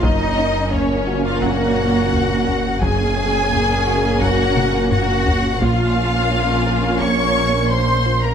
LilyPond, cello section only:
\new Staff \with { instrumentName = "Cello section" } { \time 4/4 \key ges \lydian \tempo 4 = 86 ees'4 des'8. f'16 ges'2 | aes'2 ges'4 ges'4 | f'2 des''4 c''8. bes'16 | }